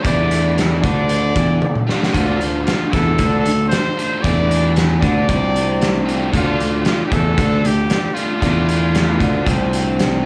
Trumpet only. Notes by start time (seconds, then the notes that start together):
0.03 D5
0.83 D5
2.13 F4
2.66 F4
2.91 A4
3.39 A4
3.68 C5
4.22 D5
5.02 D5
6.36 F4
6.87 F4
7.06 G4
7.14 A4
7.66 G4
8.14 F4